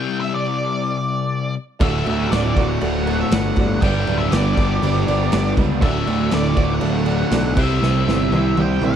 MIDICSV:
0, 0, Header, 1, 8, 480
1, 0, Start_track
1, 0, Tempo, 501672
1, 1738, Time_signature, 4, 2, 24, 8
1, 8571, End_track
2, 0, Start_track
2, 0, Title_t, "Lead electric guitar"
2, 0, Program_c, 0, 29
2, 0, Note_on_c, 0, 79, 112
2, 154, Note_off_c, 0, 79, 0
2, 196, Note_on_c, 0, 76, 99
2, 310, Note_off_c, 0, 76, 0
2, 330, Note_on_c, 0, 74, 80
2, 1475, Note_off_c, 0, 74, 0
2, 1745, Note_on_c, 0, 76, 102
2, 1971, Note_off_c, 0, 76, 0
2, 1982, Note_on_c, 0, 76, 88
2, 2206, Note_off_c, 0, 76, 0
2, 2210, Note_on_c, 0, 74, 83
2, 2548, Note_off_c, 0, 74, 0
2, 2571, Note_on_c, 0, 78, 102
2, 3063, Note_off_c, 0, 78, 0
2, 3067, Note_on_c, 0, 76, 80
2, 3183, Note_off_c, 0, 76, 0
2, 3183, Note_on_c, 0, 78, 107
2, 3653, Note_off_c, 0, 78, 0
2, 3657, Note_on_c, 0, 79, 110
2, 4001, Note_off_c, 0, 79, 0
2, 4005, Note_on_c, 0, 76, 94
2, 4126, Note_on_c, 0, 74, 86
2, 4135, Note_off_c, 0, 76, 0
2, 5293, Note_off_c, 0, 74, 0
2, 5569, Note_on_c, 0, 76, 98
2, 6019, Note_off_c, 0, 76, 0
2, 6070, Note_on_c, 0, 74, 96
2, 6434, Note_off_c, 0, 74, 0
2, 6452, Note_on_c, 0, 78, 96
2, 7279, Note_off_c, 0, 78, 0
2, 7283, Note_on_c, 0, 76, 109
2, 8242, Note_off_c, 0, 76, 0
2, 8246, Note_on_c, 0, 79, 97
2, 8473, Note_off_c, 0, 79, 0
2, 8477, Note_on_c, 0, 78, 98
2, 8571, Note_off_c, 0, 78, 0
2, 8571, End_track
3, 0, Start_track
3, 0, Title_t, "Honky-tonk piano"
3, 0, Program_c, 1, 3
3, 1716, Note_on_c, 1, 62, 107
3, 1723, Note_on_c, 1, 66, 91
3, 1725, Note_on_c, 1, 69, 94
3, 1726, Note_on_c, 1, 74, 110
3, 1918, Note_off_c, 1, 62, 0
3, 1922, Note_off_c, 1, 66, 0
3, 1923, Note_off_c, 1, 69, 0
3, 1924, Note_off_c, 1, 74, 0
3, 1963, Note_on_c, 1, 62, 77
3, 1965, Note_on_c, 1, 66, 70
3, 1974, Note_on_c, 1, 69, 75
3, 1982, Note_on_c, 1, 74, 76
3, 2162, Note_off_c, 1, 62, 0
3, 2163, Note_off_c, 1, 66, 0
3, 2168, Note_off_c, 1, 69, 0
3, 2172, Note_off_c, 1, 74, 0
3, 2199, Note_on_c, 1, 62, 70
3, 2201, Note_on_c, 1, 69, 62
3, 2202, Note_on_c, 1, 66, 64
3, 2204, Note_on_c, 1, 74, 78
3, 2400, Note_off_c, 1, 62, 0
3, 2401, Note_off_c, 1, 69, 0
3, 2402, Note_off_c, 1, 66, 0
3, 2402, Note_off_c, 1, 74, 0
3, 2450, Note_on_c, 1, 66, 76
3, 2458, Note_on_c, 1, 62, 80
3, 2460, Note_on_c, 1, 69, 68
3, 2466, Note_on_c, 1, 74, 94
3, 2646, Note_off_c, 1, 66, 0
3, 2649, Note_off_c, 1, 62, 0
3, 2651, Note_off_c, 1, 69, 0
3, 2654, Note_off_c, 1, 74, 0
3, 2684, Note_on_c, 1, 74, 114
3, 2685, Note_on_c, 1, 62, 98
3, 2691, Note_on_c, 1, 66, 103
3, 2696, Note_on_c, 1, 69, 96
3, 2883, Note_off_c, 1, 62, 0
3, 2883, Note_off_c, 1, 74, 0
3, 2886, Note_off_c, 1, 66, 0
3, 2888, Note_off_c, 1, 69, 0
3, 2927, Note_on_c, 1, 62, 84
3, 2929, Note_on_c, 1, 66, 74
3, 2935, Note_on_c, 1, 69, 74
3, 2938, Note_on_c, 1, 74, 93
3, 3124, Note_off_c, 1, 62, 0
3, 3125, Note_off_c, 1, 66, 0
3, 3128, Note_off_c, 1, 69, 0
3, 3130, Note_off_c, 1, 74, 0
3, 3183, Note_on_c, 1, 66, 65
3, 3184, Note_on_c, 1, 62, 73
3, 3189, Note_on_c, 1, 71, 81
3, 3191, Note_on_c, 1, 69, 73
3, 3372, Note_off_c, 1, 66, 0
3, 3373, Note_off_c, 1, 62, 0
3, 3375, Note_off_c, 1, 71, 0
3, 3376, Note_off_c, 1, 69, 0
3, 3426, Note_on_c, 1, 66, 75
3, 3427, Note_on_c, 1, 69, 74
3, 3428, Note_on_c, 1, 62, 84
3, 3431, Note_on_c, 1, 74, 91
3, 3613, Note_off_c, 1, 66, 0
3, 3614, Note_off_c, 1, 62, 0
3, 3614, Note_off_c, 1, 69, 0
3, 3616, Note_off_c, 1, 74, 0
3, 3641, Note_on_c, 1, 62, 103
3, 3649, Note_on_c, 1, 67, 95
3, 3649, Note_on_c, 1, 71, 90
3, 3656, Note_on_c, 1, 74, 101
3, 3841, Note_off_c, 1, 62, 0
3, 3845, Note_off_c, 1, 67, 0
3, 3845, Note_off_c, 1, 71, 0
3, 3848, Note_off_c, 1, 74, 0
3, 3887, Note_on_c, 1, 67, 71
3, 3894, Note_on_c, 1, 62, 76
3, 3897, Note_on_c, 1, 71, 77
3, 3897, Note_on_c, 1, 74, 84
3, 4084, Note_off_c, 1, 67, 0
3, 4087, Note_off_c, 1, 62, 0
3, 4089, Note_off_c, 1, 71, 0
3, 4089, Note_off_c, 1, 74, 0
3, 4149, Note_on_c, 1, 62, 76
3, 4155, Note_on_c, 1, 67, 78
3, 4158, Note_on_c, 1, 74, 83
3, 4161, Note_on_c, 1, 71, 75
3, 4335, Note_off_c, 1, 62, 0
3, 4338, Note_off_c, 1, 67, 0
3, 4340, Note_off_c, 1, 74, 0
3, 4341, Note_off_c, 1, 71, 0
3, 4380, Note_on_c, 1, 67, 75
3, 4381, Note_on_c, 1, 71, 81
3, 4382, Note_on_c, 1, 62, 85
3, 4389, Note_on_c, 1, 74, 90
3, 4570, Note_off_c, 1, 67, 0
3, 4571, Note_off_c, 1, 62, 0
3, 4571, Note_off_c, 1, 71, 0
3, 4575, Note_off_c, 1, 74, 0
3, 4614, Note_on_c, 1, 71, 101
3, 4615, Note_on_c, 1, 62, 112
3, 4616, Note_on_c, 1, 67, 109
3, 4616, Note_on_c, 1, 74, 114
3, 4808, Note_off_c, 1, 62, 0
3, 4808, Note_off_c, 1, 67, 0
3, 4808, Note_off_c, 1, 71, 0
3, 4808, Note_off_c, 1, 74, 0
3, 4852, Note_on_c, 1, 62, 105
3, 4855, Note_on_c, 1, 67, 90
3, 4859, Note_on_c, 1, 71, 95
3, 4862, Note_on_c, 1, 74, 104
3, 5046, Note_off_c, 1, 62, 0
3, 5048, Note_off_c, 1, 67, 0
3, 5050, Note_off_c, 1, 71, 0
3, 5051, Note_off_c, 1, 74, 0
3, 5082, Note_on_c, 1, 67, 81
3, 5086, Note_on_c, 1, 62, 86
3, 5088, Note_on_c, 1, 71, 76
3, 5093, Note_on_c, 1, 74, 96
3, 5281, Note_off_c, 1, 67, 0
3, 5283, Note_off_c, 1, 62, 0
3, 5284, Note_off_c, 1, 71, 0
3, 5287, Note_off_c, 1, 74, 0
3, 5329, Note_on_c, 1, 67, 83
3, 5334, Note_on_c, 1, 62, 102
3, 5335, Note_on_c, 1, 74, 120
3, 5337, Note_on_c, 1, 71, 95
3, 5525, Note_off_c, 1, 67, 0
3, 5527, Note_off_c, 1, 62, 0
3, 5528, Note_off_c, 1, 74, 0
3, 5529, Note_off_c, 1, 71, 0
3, 5570, Note_on_c, 1, 62, 102
3, 5570, Note_on_c, 1, 66, 92
3, 5571, Note_on_c, 1, 69, 98
3, 5575, Note_on_c, 1, 74, 109
3, 5765, Note_off_c, 1, 62, 0
3, 5765, Note_off_c, 1, 66, 0
3, 5766, Note_off_c, 1, 69, 0
3, 5767, Note_off_c, 1, 74, 0
3, 5799, Note_on_c, 1, 66, 73
3, 5801, Note_on_c, 1, 62, 81
3, 5804, Note_on_c, 1, 74, 85
3, 5806, Note_on_c, 1, 69, 68
3, 6000, Note_off_c, 1, 66, 0
3, 6001, Note_off_c, 1, 62, 0
3, 6002, Note_off_c, 1, 74, 0
3, 6003, Note_off_c, 1, 69, 0
3, 6023, Note_on_c, 1, 62, 77
3, 6026, Note_on_c, 1, 66, 75
3, 6028, Note_on_c, 1, 69, 74
3, 6029, Note_on_c, 1, 74, 92
3, 6232, Note_off_c, 1, 62, 0
3, 6233, Note_off_c, 1, 66, 0
3, 6234, Note_off_c, 1, 69, 0
3, 6235, Note_off_c, 1, 74, 0
3, 6276, Note_on_c, 1, 62, 79
3, 6280, Note_on_c, 1, 69, 72
3, 6283, Note_on_c, 1, 66, 70
3, 6284, Note_on_c, 1, 74, 91
3, 6478, Note_off_c, 1, 62, 0
3, 6480, Note_off_c, 1, 69, 0
3, 6482, Note_off_c, 1, 66, 0
3, 6482, Note_off_c, 1, 74, 0
3, 6512, Note_on_c, 1, 62, 102
3, 6513, Note_on_c, 1, 66, 98
3, 6516, Note_on_c, 1, 69, 99
3, 6516, Note_on_c, 1, 74, 117
3, 6716, Note_off_c, 1, 62, 0
3, 6717, Note_off_c, 1, 66, 0
3, 6718, Note_off_c, 1, 69, 0
3, 6718, Note_off_c, 1, 74, 0
3, 6748, Note_on_c, 1, 66, 78
3, 6754, Note_on_c, 1, 62, 83
3, 6756, Note_on_c, 1, 69, 80
3, 6764, Note_on_c, 1, 74, 91
3, 6954, Note_off_c, 1, 66, 0
3, 6957, Note_off_c, 1, 62, 0
3, 6958, Note_off_c, 1, 69, 0
3, 6962, Note_off_c, 1, 74, 0
3, 6996, Note_on_c, 1, 62, 89
3, 6998, Note_on_c, 1, 66, 86
3, 6998, Note_on_c, 1, 74, 99
3, 7001, Note_on_c, 1, 69, 80
3, 7198, Note_off_c, 1, 62, 0
3, 7199, Note_off_c, 1, 66, 0
3, 7199, Note_off_c, 1, 74, 0
3, 7201, Note_off_c, 1, 69, 0
3, 7247, Note_on_c, 1, 64, 83
3, 7248, Note_on_c, 1, 72, 84
3, 7250, Note_on_c, 1, 67, 77
3, 7253, Note_on_c, 1, 76, 105
3, 7636, Note_off_c, 1, 64, 0
3, 7636, Note_off_c, 1, 72, 0
3, 7637, Note_off_c, 1, 67, 0
3, 7639, Note_off_c, 1, 76, 0
3, 7716, Note_on_c, 1, 64, 78
3, 7724, Note_on_c, 1, 67, 68
3, 7727, Note_on_c, 1, 72, 64
3, 7728, Note_on_c, 1, 76, 77
3, 7918, Note_off_c, 1, 64, 0
3, 7923, Note_off_c, 1, 67, 0
3, 7924, Note_off_c, 1, 72, 0
3, 7924, Note_off_c, 1, 76, 0
3, 7967, Note_on_c, 1, 72, 83
3, 7971, Note_on_c, 1, 64, 86
3, 7973, Note_on_c, 1, 67, 85
3, 7978, Note_on_c, 1, 76, 100
3, 8164, Note_off_c, 1, 72, 0
3, 8166, Note_off_c, 1, 64, 0
3, 8167, Note_off_c, 1, 67, 0
3, 8170, Note_off_c, 1, 76, 0
3, 8205, Note_on_c, 1, 78, 84
3, 8206, Note_on_c, 1, 64, 77
3, 8208, Note_on_c, 1, 72, 79
3, 8213, Note_on_c, 1, 67, 82
3, 8404, Note_off_c, 1, 64, 0
3, 8404, Note_off_c, 1, 78, 0
3, 8405, Note_off_c, 1, 72, 0
3, 8407, Note_off_c, 1, 67, 0
3, 8445, Note_on_c, 1, 64, 112
3, 8447, Note_on_c, 1, 67, 102
3, 8451, Note_on_c, 1, 76, 107
3, 8454, Note_on_c, 1, 72, 99
3, 8571, Note_off_c, 1, 64, 0
3, 8571, Note_off_c, 1, 67, 0
3, 8571, Note_off_c, 1, 72, 0
3, 8571, Note_off_c, 1, 76, 0
3, 8571, End_track
4, 0, Start_track
4, 0, Title_t, "Overdriven electric guitar"
4, 0, Program_c, 2, 29
4, 0, Note_on_c, 2, 48, 97
4, 0, Note_on_c, 2, 55, 91
4, 0, Note_on_c, 2, 60, 108
4, 0, Note_on_c, 2, 64, 94
4, 0, Note_on_c, 2, 67, 104
4, 0, Note_on_c, 2, 72, 94
4, 1480, Note_off_c, 2, 48, 0
4, 1482, Note_off_c, 2, 55, 0
4, 1484, Note_off_c, 2, 60, 0
4, 1486, Note_off_c, 2, 67, 0
4, 1487, Note_off_c, 2, 64, 0
4, 1489, Note_off_c, 2, 72, 0
4, 8571, End_track
5, 0, Start_track
5, 0, Title_t, "Overdriven electric guitar"
5, 0, Program_c, 3, 29
5, 1734, Note_on_c, 3, 38, 74
5, 1985, Note_on_c, 3, 45, 73
5, 2230, Note_on_c, 3, 50, 74
5, 2470, Note_on_c, 3, 66, 80
5, 2718, Note_on_c, 3, 57, 75
5, 2935, Note_off_c, 3, 38, 0
5, 2939, Note_off_c, 3, 66, 0
5, 2951, Note_on_c, 3, 66, 87
5, 3181, Note_off_c, 3, 45, 0
5, 3187, Note_off_c, 3, 50, 0
5, 3198, Note_on_c, 3, 50, 81
5, 3431, Note_on_c, 3, 45, 78
5, 3664, Note_off_c, 3, 45, 0
5, 3664, Note_off_c, 3, 66, 0
5, 3667, Note_off_c, 3, 57, 0
5, 3667, Note_on_c, 3, 43, 75
5, 3668, Note_off_c, 3, 50, 0
5, 3903, Note_on_c, 3, 55, 81
5, 4142, Note_on_c, 3, 59, 79
5, 4376, Note_on_c, 3, 67, 86
5, 4622, Note_on_c, 3, 62, 78
5, 4852, Note_off_c, 3, 67, 0
5, 4862, Note_off_c, 3, 43, 0
5, 4864, Note_on_c, 3, 67, 85
5, 5094, Note_off_c, 3, 59, 0
5, 5100, Note_off_c, 3, 55, 0
5, 5105, Note_on_c, 3, 59, 77
5, 5349, Note_on_c, 3, 55, 78
5, 5579, Note_off_c, 3, 62, 0
5, 5580, Note_off_c, 3, 67, 0
5, 5581, Note_off_c, 3, 59, 0
5, 5583, Note_off_c, 3, 55, 0
5, 5587, Note_on_c, 3, 38, 78
5, 5821, Note_on_c, 3, 45, 67
5, 6049, Note_on_c, 3, 50, 78
5, 6286, Note_on_c, 3, 66, 83
5, 6531, Note_on_c, 3, 57, 74
5, 6758, Note_off_c, 3, 66, 0
5, 6769, Note_on_c, 3, 66, 80
5, 6782, Note_off_c, 3, 38, 0
5, 6994, Note_off_c, 3, 50, 0
5, 7005, Note_on_c, 3, 50, 76
5, 7019, Note_off_c, 3, 45, 0
5, 7245, Note_on_c, 3, 48, 73
5, 7251, Note_off_c, 3, 50, 0
5, 7253, Note_off_c, 3, 66, 0
5, 7254, Note_off_c, 3, 57, 0
5, 7477, Note_off_c, 3, 48, 0
5, 7489, Note_on_c, 3, 48, 78
5, 7734, Note_on_c, 3, 60, 69
5, 7974, Note_on_c, 3, 64, 75
5, 8214, Note_on_c, 3, 72, 85
5, 8450, Note_on_c, 3, 67, 72
5, 8571, Note_off_c, 3, 48, 0
5, 8571, Note_off_c, 3, 60, 0
5, 8571, Note_off_c, 3, 64, 0
5, 8571, Note_off_c, 3, 67, 0
5, 8571, Note_off_c, 3, 72, 0
5, 8571, End_track
6, 0, Start_track
6, 0, Title_t, "Overdriven electric guitar"
6, 0, Program_c, 4, 29
6, 1735, Note_on_c, 4, 38, 102
6, 1743, Note_on_c, 4, 45, 101
6, 1752, Note_on_c, 4, 50, 115
6, 1756, Note_on_c, 4, 57, 110
6, 1763, Note_on_c, 4, 66, 116
6, 2440, Note_off_c, 4, 66, 0
6, 2441, Note_off_c, 4, 38, 0
6, 2445, Note_off_c, 4, 45, 0
6, 2445, Note_off_c, 4, 57, 0
6, 2450, Note_off_c, 4, 50, 0
6, 2452, Note_on_c, 4, 66, 94
6, 2457, Note_on_c, 4, 57, 89
6, 2466, Note_on_c, 4, 45, 78
6, 2468, Note_on_c, 4, 50, 88
6, 2470, Note_on_c, 4, 38, 71
6, 3640, Note_off_c, 4, 66, 0
6, 3642, Note_off_c, 4, 57, 0
6, 3647, Note_off_c, 4, 38, 0
6, 3647, Note_off_c, 4, 45, 0
6, 3648, Note_off_c, 4, 50, 0
6, 3651, Note_on_c, 4, 43, 111
6, 3662, Note_on_c, 4, 50, 118
6, 3670, Note_on_c, 4, 55, 111
6, 3675, Note_on_c, 4, 59, 117
6, 3681, Note_on_c, 4, 62, 114
6, 3684, Note_on_c, 4, 67, 127
6, 4359, Note_off_c, 4, 43, 0
6, 4360, Note_off_c, 4, 67, 0
6, 4365, Note_off_c, 4, 50, 0
6, 4369, Note_off_c, 4, 55, 0
6, 4371, Note_off_c, 4, 59, 0
6, 4372, Note_on_c, 4, 67, 87
6, 4383, Note_off_c, 4, 62, 0
6, 4387, Note_on_c, 4, 62, 92
6, 4390, Note_on_c, 4, 55, 81
6, 4391, Note_on_c, 4, 59, 95
6, 4400, Note_on_c, 4, 50, 74
6, 4403, Note_on_c, 4, 43, 86
6, 5544, Note_off_c, 4, 43, 0
6, 5548, Note_on_c, 4, 38, 116
6, 5551, Note_off_c, 4, 50, 0
6, 5557, Note_on_c, 4, 45, 113
6, 5559, Note_off_c, 4, 55, 0
6, 5559, Note_off_c, 4, 67, 0
6, 5562, Note_on_c, 4, 50, 110
6, 5567, Note_off_c, 4, 62, 0
6, 5569, Note_off_c, 4, 59, 0
6, 5573, Note_on_c, 4, 57, 120
6, 5579, Note_on_c, 4, 66, 127
6, 6257, Note_off_c, 4, 66, 0
6, 6265, Note_off_c, 4, 57, 0
6, 6268, Note_off_c, 4, 38, 0
6, 6269, Note_on_c, 4, 66, 106
6, 6271, Note_off_c, 4, 50, 0
6, 6272, Note_off_c, 4, 45, 0
6, 6276, Note_on_c, 4, 57, 91
6, 6283, Note_on_c, 4, 50, 89
6, 6288, Note_on_c, 4, 45, 79
6, 6294, Note_on_c, 4, 38, 76
6, 7224, Note_off_c, 4, 38, 0
6, 7228, Note_off_c, 4, 66, 0
6, 7228, Note_on_c, 4, 48, 94
6, 7232, Note_off_c, 4, 57, 0
6, 7235, Note_off_c, 4, 50, 0
6, 7238, Note_off_c, 4, 45, 0
6, 7242, Note_on_c, 4, 55, 89
6, 7245, Note_on_c, 4, 60, 92
6, 7254, Note_on_c, 4, 64, 108
6, 7261, Note_on_c, 4, 67, 99
6, 7262, Note_on_c, 4, 72, 106
6, 7948, Note_off_c, 4, 48, 0
6, 7955, Note_off_c, 4, 55, 0
6, 7957, Note_off_c, 4, 60, 0
6, 7961, Note_off_c, 4, 64, 0
6, 7962, Note_on_c, 4, 48, 86
6, 7965, Note_off_c, 4, 67, 0
6, 7966, Note_off_c, 4, 72, 0
6, 7976, Note_on_c, 4, 55, 81
6, 7977, Note_on_c, 4, 60, 90
6, 7978, Note_on_c, 4, 64, 94
6, 7989, Note_on_c, 4, 67, 93
6, 7990, Note_on_c, 4, 72, 94
6, 8571, Note_off_c, 4, 48, 0
6, 8571, Note_off_c, 4, 55, 0
6, 8571, Note_off_c, 4, 60, 0
6, 8571, Note_off_c, 4, 64, 0
6, 8571, Note_off_c, 4, 67, 0
6, 8571, Note_off_c, 4, 72, 0
6, 8571, End_track
7, 0, Start_track
7, 0, Title_t, "Picked electric bass"
7, 0, Program_c, 5, 34
7, 1729, Note_on_c, 5, 26, 105
7, 1925, Note_off_c, 5, 26, 0
7, 1973, Note_on_c, 5, 38, 90
7, 2168, Note_off_c, 5, 38, 0
7, 2223, Note_on_c, 5, 26, 102
7, 2413, Note_off_c, 5, 26, 0
7, 2452, Note_on_c, 5, 26, 89
7, 2647, Note_off_c, 5, 26, 0
7, 2698, Note_on_c, 5, 26, 91
7, 3083, Note_off_c, 5, 26, 0
7, 3174, Note_on_c, 5, 31, 95
7, 3368, Note_off_c, 5, 31, 0
7, 3418, Note_on_c, 5, 31, 96
7, 3610, Note_off_c, 5, 31, 0
7, 3658, Note_on_c, 5, 31, 106
7, 3850, Note_off_c, 5, 31, 0
7, 3897, Note_on_c, 5, 26, 98
7, 4090, Note_off_c, 5, 26, 0
7, 4137, Note_on_c, 5, 31, 102
7, 4329, Note_off_c, 5, 31, 0
7, 4382, Note_on_c, 5, 31, 94
7, 4573, Note_off_c, 5, 31, 0
7, 4619, Note_on_c, 5, 31, 98
7, 4811, Note_off_c, 5, 31, 0
7, 4857, Note_on_c, 5, 31, 100
7, 5050, Note_off_c, 5, 31, 0
7, 5101, Note_on_c, 5, 31, 103
7, 5292, Note_off_c, 5, 31, 0
7, 5332, Note_on_c, 5, 37, 90
7, 5569, Note_on_c, 5, 26, 107
7, 5583, Note_off_c, 5, 37, 0
7, 5765, Note_off_c, 5, 26, 0
7, 5814, Note_on_c, 5, 38, 102
7, 6007, Note_off_c, 5, 38, 0
7, 6052, Note_on_c, 5, 26, 102
7, 6247, Note_off_c, 5, 26, 0
7, 6287, Note_on_c, 5, 26, 100
7, 6484, Note_off_c, 5, 26, 0
7, 6530, Note_on_c, 5, 26, 94
7, 6918, Note_off_c, 5, 26, 0
7, 7001, Note_on_c, 5, 35, 104
7, 7244, Note_off_c, 5, 35, 0
7, 7244, Note_on_c, 5, 36, 93
7, 7442, Note_off_c, 5, 36, 0
7, 7484, Note_on_c, 5, 36, 108
7, 7682, Note_off_c, 5, 36, 0
7, 7723, Note_on_c, 5, 31, 96
7, 7922, Note_off_c, 5, 31, 0
7, 7959, Note_on_c, 5, 36, 99
7, 8159, Note_off_c, 5, 36, 0
7, 8191, Note_on_c, 5, 36, 102
7, 8395, Note_off_c, 5, 36, 0
7, 8433, Note_on_c, 5, 36, 103
7, 8571, Note_off_c, 5, 36, 0
7, 8571, End_track
8, 0, Start_track
8, 0, Title_t, "Drums"
8, 1728, Note_on_c, 9, 49, 89
8, 1731, Note_on_c, 9, 36, 114
8, 1824, Note_off_c, 9, 49, 0
8, 1827, Note_off_c, 9, 36, 0
8, 1974, Note_on_c, 9, 49, 61
8, 2070, Note_off_c, 9, 49, 0
8, 2218, Note_on_c, 9, 49, 84
8, 2229, Note_on_c, 9, 38, 106
8, 2314, Note_off_c, 9, 49, 0
8, 2324, Note_off_c, 9, 38, 0
8, 2455, Note_on_c, 9, 36, 92
8, 2456, Note_on_c, 9, 49, 66
8, 2551, Note_off_c, 9, 36, 0
8, 2552, Note_off_c, 9, 49, 0
8, 2692, Note_on_c, 9, 49, 74
8, 2787, Note_off_c, 9, 49, 0
8, 2937, Note_on_c, 9, 49, 64
8, 3033, Note_off_c, 9, 49, 0
8, 3171, Note_on_c, 9, 49, 97
8, 3181, Note_on_c, 9, 38, 124
8, 3267, Note_off_c, 9, 49, 0
8, 3277, Note_off_c, 9, 38, 0
8, 3406, Note_on_c, 9, 49, 66
8, 3415, Note_on_c, 9, 36, 95
8, 3502, Note_off_c, 9, 49, 0
8, 3511, Note_off_c, 9, 36, 0
8, 3656, Note_on_c, 9, 49, 96
8, 3658, Note_on_c, 9, 36, 117
8, 3751, Note_off_c, 9, 49, 0
8, 3753, Note_off_c, 9, 36, 0
8, 3895, Note_on_c, 9, 49, 67
8, 3991, Note_off_c, 9, 49, 0
8, 4133, Note_on_c, 9, 49, 88
8, 4144, Note_on_c, 9, 38, 115
8, 4229, Note_off_c, 9, 49, 0
8, 4239, Note_off_c, 9, 38, 0
8, 4374, Note_on_c, 9, 49, 75
8, 4377, Note_on_c, 9, 36, 89
8, 4469, Note_off_c, 9, 49, 0
8, 4472, Note_off_c, 9, 36, 0
8, 4624, Note_on_c, 9, 49, 82
8, 4720, Note_off_c, 9, 49, 0
8, 4861, Note_on_c, 9, 49, 64
8, 4957, Note_off_c, 9, 49, 0
8, 5089, Note_on_c, 9, 49, 93
8, 5099, Note_on_c, 9, 38, 121
8, 5184, Note_off_c, 9, 49, 0
8, 5195, Note_off_c, 9, 38, 0
8, 5330, Note_on_c, 9, 49, 65
8, 5332, Note_on_c, 9, 36, 96
8, 5426, Note_off_c, 9, 49, 0
8, 5428, Note_off_c, 9, 36, 0
8, 5567, Note_on_c, 9, 49, 84
8, 5571, Note_on_c, 9, 36, 122
8, 5663, Note_off_c, 9, 49, 0
8, 5667, Note_off_c, 9, 36, 0
8, 5810, Note_on_c, 9, 49, 67
8, 5906, Note_off_c, 9, 49, 0
8, 6039, Note_on_c, 9, 49, 89
8, 6050, Note_on_c, 9, 38, 115
8, 6135, Note_off_c, 9, 49, 0
8, 6145, Note_off_c, 9, 38, 0
8, 6283, Note_on_c, 9, 49, 64
8, 6285, Note_on_c, 9, 36, 93
8, 6379, Note_off_c, 9, 49, 0
8, 6381, Note_off_c, 9, 36, 0
8, 6514, Note_on_c, 9, 49, 88
8, 6609, Note_off_c, 9, 49, 0
8, 6752, Note_on_c, 9, 49, 72
8, 6848, Note_off_c, 9, 49, 0
8, 6998, Note_on_c, 9, 49, 98
8, 7008, Note_on_c, 9, 38, 127
8, 7094, Note_off_c, 9, 49, 0
8, 7104, Note_off_c, 9, 38, 0
8, 7240, Note_on_c, 9, 49, 105
8, 7242, Note_on_c, 9, 36, 118
8, 7335, Note_off_c, 9, 49, 0
8, 7337, Note_off_c, 9, 36, 0
8, 7488, Note_on_c, 9, 38, 73
8, 7584, Note_off_c, 9, 38, 0
8, 7737, Note_on_c, 9, 38, 79
8, 7833, Note_off_c, 9, 38, 0
8, 7964, Note_on_c, 9, 48, 82
8, 8060, Note_off_c, 9, 48, 0
8, 8203, Note_on_c, 9, 48, 90
8, 8299, Note_off_c, 9, 48, 0
8, 8435, Note_on_c, 9, 47, 88
8, 8531, Note_off_c, 9, 47, 0
8, 8571, End_track
0, 0, End_of_file